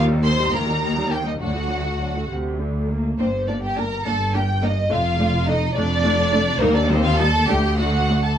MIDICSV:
0, 0, Header, 1, 6, 480
1, 0, Start_track
1, 0, Tempo, 587659
1, 1148, Time_signature, 6, 3, 24, 8
1, 3079, Tempo, 570342
1, 5959, Tempo, 606673
1, 6899, End_track
2, 0, Start_track
2, 0, Title_t, "Violin section"
2, 0, Program_c, 0, 48
2, 193, Note_on_c, 0, 84, 110
2, 425, Note_off_c, 0, 84, 0
2, 438, Note_on_c, 0, 82, 102
2, 911, Note_off_c, 0, 82, 0
2, 915, Note_on_c, 0, 79, 97
2, 1031, Note_off_c, 0, 79, 0
2, 1040, Note_on_c, 0, 75, 81
2, 1085, Note_off_c, 0, 75, 0
2, 1153, Note_on_c, 0, 78, 92
2, 1865, Note_off_c, 0, 78, 0
2, 2603, Note_on_c, 0, 72, 95
2, 2825, Note_off_c, 0, 72, 0
2, 2841, Note_on_c, 0, 74, 78
2, 2960, Note_off_c, 0, 74, 0
2, 2966, Note_on_c, 0, 79, 83
2, 3080, Note_off_c, 0, 79, 0
2, 3087, Note_on_c, 0, 82, 85
2, 3320, Note_on_c, 0, 81, 95
2, 3325, Note_off_c, 0, 82, 0
2, 3561, Note_off_c, 0, 81, 0
2, 3565, Note_on_c, 0, 79, 99
2, 3803, Note_off_c, 0, 79, 0
2, 3808, Note_on_c, 0, 75, 106
2, 4043, Note_off_c, 0, 75, 0
2, 4050, Note_on_c, 0, 77, 103
2, 4515, Note_on_c, 0, 75, 101
2, 4519, Note_off_c, 0, 77, 0
2, 4753, Note_off_c, 0, 75, 0
2, 4759, Note_on_c, 0, 74, 127
2, 5459, Note_off_c, 0, 74, 0
2, 5472, Note_on_c, 0, 70, 120
2, 5590, Note_on_c, 0, 74, 116
2, 5592, Note_off_c, 0, 70, 0
2, 5706, Note_on_c, 0, 72, 114
2, 5711, Note_off_c, 0, 74, 0
2, 5831, Note_off_c, 0, 72, 0
2, 5833, Note_on_c, 0, 77, 118
2, 5955, Note_off_c, 0, 77, 0
2, 5957, Note_on_c, 0, 81, 105
2, 6188, Note_off_c, 0, 81, 0
2, 6193, Note_on_c, 0, 79, 109
2, 6424, Note_on_c, 0, 78, 109
2, 6430, Note_off_c, 0, 79, 0
2, 6785, Note_off_c, 0, 78, 0
2, 6795, Note_on_c, 0, 81, 92
2, 6899, Note_off_c, 0, 81, 0
2, 6899, End_track
3, 0, Start_track
3, 0, Title_t, "Violin section"
3, 0, Program_c, 1, 48
3, 200, Note_on_c, 1, 72, 110
3, 428, Note_off_c, 1, 72, 0
3, 429, Note_on_c, 1, 70, 90
3, 902, Note_on_c, 1, 67, 76
3, 907, Note_off_c, 1, 70, 0
3, 951, Note_off_c, 1, 67, 0
3, 1026, Note_on_c, 1, 63, 64
3, 1074, Note_off_c, 1, 63, 0
3, 1143, Note_on_c, 1, 66, 77
3, 1860, Note_off_c, 1, 66, 0
3, 2602, Note_on_c, 1, 60, 78
3, 2668, Note_off_c, 1, 60, 0
3, 2844, Note_on_c, 1, 62, 65
3, 2891, Note_off_c, 1, 62, 0
3, 2958, Note_on_c, 1, 67, 81
3, 3075, Note_off_c, 1, 67, 0
3, 3077, Note_on_c, 1, 70, 89
3, 3318, Note_on_c, 1, 69, 87
3, 3320, Note_off_c, 1, 70, 0
3, 3556, Note_off_c, 1, 69, 0
3, 3560, Note_on_c, 1, 67, 80
3, 3628, Note_off_c, 1, 67, 0
3, 3796, Note_on_c, 1, 63, 78
3, 3863, Note_off_c, 1, 63, 0
3, 4033, Note_on_c, 1, 65, 89
3, 4501, Note_off_c, 1, 65, 0
3, 4507, Note_on_c, 1, 63, 102
3, 4737, Note_on_c, 1, 62, 111
3, 4749, Note_off_c, 1, 63, 0
3, 5448, Note_off_c, 1, 62, 0
3, 5462, Note_on_c, 1, 58, 106
3, 5582, Note_on_c, 1, 62, 101
3, 5586, Note_off_c, 1, 58, 0
3, 5707, Note_off_c, 1, 62, 0
3, 5709, Note_on_c, 1, 60, 106
3, 5833, Note_off_c, 1, 60, 0
3, 5834, Note_on_c, 1, 65, 110
3, 5956, Note_on_c, 1, 69, 117
3, 5958, Note_off_c, 1, 65, 0
3, 6188, Note_on_c, 1, 67, 102
3, 6192, Note_off_c, 1, 69, 0
3, 6428, Note_off_c, 1, 67, 0
3, 6428, Note_on_c, 1, 66, 86
3, 6788, Note_on_c, 1, 69, 79
3, 6794, Note_off_c, 1, 66, 0
3, 6899, Note_off_c, 1, 69, 0
3, 6899, End_track
4, 0, Start_track
4, 0, Title_t, "Viola section"
4, 0, Program_c, 2, 48
4, 70, Note_on_c, 2, 63, 69
4, 71, Note_on_c, 2, 55, 70
4, 191, Note_off_c, 2, 55, 0
4, 191, Note_off_c, 2, 63, 0
4, 196, Note_on_c, 2, 58, 64
4, 197, Note_on_c, 2, 51, 71
4, 305, Note_off_c, 2, 58, 0
4, 306, Note_off_c, 2, 51, 0
4, 316, Note_on_c, 2, 63, 68
4, 317, Note_on_c, 2, 55, 64
4, 431, Note_on_c, 2, 51, 70
4, 432, Note_off_c, 2, 63, 0
4, 433, Note_off_c, 2, 55, 0
4, 434, Note_on_c, 2, 58, 67
4, 549, Note_off_c, 2, 51, 0
4, 551, Note_off_c, 2, 58, 0
4, 554, Note_on_c, 2, 55, 61
4, 556, Note_on_c, 2, 63, 61
4, 668, Note_on_c, 2, 51, 62
4, 670, Note_on_c, 2, 58, 62
4, 671, Note_off_c, 2, 55, 0
4, 672, Note_off_c, 2, 63, 0
4, 779, Note_off_c, 2, 51, 0
4, 780, Note_off_c, 2, 58, 0
4, 786, Note_on_c, 2, 55, 58
4, 787, Note_on_c, 2, 63, 56
4, 900, Note_on_c, 2, 51, 56
4, 901, Note_on_c, 2, 58, 59
4, 907, Note_off_c, 2, 55, 0
4, 907, Note_off_c, 2, 63, 0
4, 1021, Note_on_c, 2, 63, 52
4, 1023, Note_on_c, 2, 55, 52
4, 1024, Note_off_c, 2, 51, 0
4, 1024, Note_off_c, 2, 58, 0
4, 1142, Note_on_c, 2, 62, 56
4, 1144, Note_on_c, 2, 54, 57
4, 1145, Note_off_c, 2, 63, 0
4, 1146, Note_off_c, 2, 55, 0
4, 1257, Note_off_c, 2, 62, 0
4, 1258, Note_off_c, 2, 54, 0
4, 1264, Note_on_c, 2, 57, 57
4, 1265, Note_on_c, 2, 66, 54
4, 1383, Note_on_c, 2, 54, 51
4, 1383, Note_on_c, 2, 62, 52
4, 1387, Note_off_c, 2, 57, 0
4, 1388, Note_off_c, 2, 66, 0
4, 1508, Note_off_c, 2, 54, 0
4, 1508, Note_off_c, 2, 62, 0
4, 1509, Note_on_c, 2, 57, 47
4, 1509, Note_on_c, 2, 66, 47
4, 1632, Note_off_c, 2, 57, 0
4, 1632, Note_off_c, 2, 66, 0
4, 1636, Note_on_c, 2, 54, 48
4, 1636, Note_on_c, 2, 62, 48
4, 1748, Note_off_c, 2, 54, 0
4, 1748, Note_off_c, 2, 62, 0
4, 1760, Note_on_c, 2, 57, 51
4, 1762, Note_on_c, 2, 66, 45
4, 1876, Note_on_c, 2, 48, 71
4, 1879, Note_off_c, 2, 57, 0
4, 1880, Note_off_c, 2, 66, 0
4, 2102, Note_off_c, 2, 48, 0
4, 2120, Note_on_c, 2, 50, 60
4, 2361, Note_on_c, 2, 58, 67
4, 2362, Note_off_c, 2, 50, 0
4, 2593, Note_off_c, 2, 58, 0
4, 2602, Note_on_c, 2, 58, 59
4, 2604, Note_on_c, 2, 62, 59
4, 2668, Note_off_c, 2, 58, 0
4, 2669, Note_off_c, 2, 62, 0
4, 2842, Note_on_c, 2, 58, 53
4, 2843, Note_on_c, 2, 62, 54
4, 2908, Note_off_c, 2, 58, 0
4, 2908, Note_off_c, 2, 62, 0
4, 3074, Note_on_c, 2, 58, 57
4, 3075, Note_on_c, 2, 62, 57
4, 3142, Note_off_c, 2, 58, 0
4, 3142, Note_off_c, 2, 62, 0
4, 3318, Note_on_c, 2, 58, 67
4, 3318, Note_on_c, 2, 62, 59
4, 3386, Note_off_c, 2, 58, 0
4, 3386, Note_off_c, 2, 62, 0
4, 3563, Note_on_c, 2, 58, 64
4, 3563, Note_on_c, 2, 62, 64
4, 3630, Note_off_c, 2, 58, 0
4, 3630, Note_off_c, 2, 62, 0
4, 3797, Note_on_c, 2, 58, 65
4, 3799, Note_on_c, 2, 62, 60
4, 3864, Note_off_c, 2, 58, 0
4, 3866, Note_off_c, 2, 62, 0
4, 4033, Note_on_c, 2, 62, 73
4, 4035, Note_on_c, 2, 57, 75
4, 4101, Note_off_c, 2, 62, 0
4, 4102, Note_off_c, 2, 57, 0
4, 4278, Note_on_c, 2, 57, 65
4, 4279, Note_on_c, 2, 62, 65
4, 4345, Note_off_c, 2, 57, 0
4, 4347, Note_off_c, 2, 62, 0
4, 4512, Note_on_c, 2, 62, 76
4, 4514, Note_on_c, 2, 57, 73
4, 4579, Note_off_c, 2, 62, 0
4, 4581, Note_off_c, 2, 57, 0
4, 4758, Note_on_c, 2, 62, 79
4, 4759, Note_on_c, 2, 57, 79
4, 4826, Note_off_c, 2, 57, 0
4, 4826, Note_off_c, 2, 62, 0
4, 4991, Note_on_c, 2, 57, 81
4, 4995, Note_on_c, 2, 62, 83
4, 5059, Note_off_c, 2, 57, 0
4, 5062, Note_off_c, 2, 62, 0
4, 5225, Note_on_c, 2, 62, 82
4, 5228, Note_on_c, 2, 57, 79
4, 5292, Note_off_c, 2, 62, 0
4, 5296, Note_off_c, 2, 57, 0
4, 5471, Note_on_c, 2, 63, 89
4, 5473, Note_on_c, 2, 55, 81
4, 5539, Note_off_c, 2, 63, 0
4, 5540, Note_off_c, 2, 55, 0
4, 5707, Note_on_c, 2, 55, 79
4, 5710, Note_on_c, 2, 63, 77
4, 5774, Note_off_c, 2, 55, 0
4, 5777, Note_off_c, 2, 63, 0
4, 5956, Note_on_c, 2, 63, 78
4, 5960, Note_on_c, 2, 55, 79
4, 6019, Note_off_c, 2, 63, 0
4, 6023, Note_off_c, 2, 55, 0
4, 6190, Note_on_c, 2, 62, 82
4, 6191, Note_on_c, 2, 57, 83
4, 6253, Note_off_c, 2, 62, 0
4, 6254, Note_off_c, 2, 57, 0
4, 6429, Note_on_c, 2, 57, 71
4, 6431, Note_on_c, 2, 62, 69
4, 6492, Note_off_c, 2, 57, 0
4, 6495, Note_off_c, 2, 62, 0
4, 6670, Note_on_c, 2, 62, 62
4, 6671, Note_on_c, 2, 57, 62
4, 6733, Note_off_c, 2, 62, 0
4, 6734, Note_off_c, 2, 57, 0
4, 6899, End_track
5, 0, Start_track
5, 0, Title_t, "Cello section"
5, 0, Program_c, 3, 48
5, 0, Note_on_c, 3, 39, 100
5, 348, Note_off_c, 3, 39, 0
5, 437, Note_on_c, 3, 39, 84
5, 1066, Note_off_c, 3, 39, 0
5, 1150, Note_on_c, 3, 38, 73
5, 1792, Note_off_c, 3, 38, 0
5, 1877, Note_on_c, 3, 38, 67
5, 2517, Note_off_c, 3, 38, 0
5, 2602, Note_on_c, 3, 43, 72
5, 3235, Note_off_c, 3, 43, 0
5, 3321, Note_on_c, 3, 43, 71
5, 3955, Note_off_c, 3, 43, 0
5, 4042, Note_on_c, 3, 41, 90
5, 4669, Note_off_c, 3, 41, 0
5, 4750, Note_on_c, 3, 41, 100
5, 5385, Note_off_c, 3, 41, 0
5, 5472, Note_on_c, 3, 39, 110
5, 6111, Note_off_c, 3, 39, 0
5, 6193, Note_on_c, 3, 38, 102
5, 6832, Note_off_c, 3, 38, 0
5, 6899, End_track
6, 0, Start_track
6, 0, Title_t, "Double bass section"
6, 0, Program_c, 4, 48
6, 0, Note_on_c, 4, 39, 102
6, 346, Note_off_c, 4, 39, 0
6, 425, Note_on_c, 4, 39, 84
6, 1060, Note_off_c, 4, 39, 0
6, 1143, Note_on_c, 4, 38, 76
6, 1788, Note_off_c, 4, 38, 0
6, 1881, Note_on_c, 4, 38, 68
6, 2519, Note_off_c, 4, 38, 0
6, 2603, Note_on_c, 4, 31, 83
6, 3236, Note_off_c, 4, 31, 0
6, 3322, Note_on_c, 4, 31, 72
6, 3956, Note_off_c, 4, 31, 0
6, 4040, Note_on_c, 4, 29, 86
6, 4668, Note_off_c, 4, 29, 0
6, 4751, Note_on_c, 4, 29, 99
6, 5385, Note_off_c, 4, 29, 0
6, 5469, Note_on_c, 4, 39, 106
6, 6110, Note_off_c, 4, 39, 0
6, 6191, Note_on_c, 4, 38, 94
6, 6831, Note_off_c, 4, 38, 0
6, 6899, End_track
0, 0, End_of_file